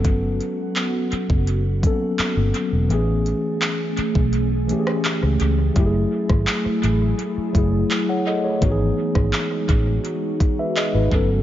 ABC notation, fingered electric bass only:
X:1
M:4/4
L:1/16
Q:1/4=84
K:F#dor
V:1 name="Fingered electric bass" clef=bass
=G,,,3 z4 F,,,4 z2 G,,, z E,,, | A,,,3 z4 B,,,4 z2 C,, C,,2 | F,,,2 z G,,, z2 A,,,2 z2 F,,,2 z4 | G,,,2 z G,,, z2 A,,,2 z4 z G,,, =G,,,2 |]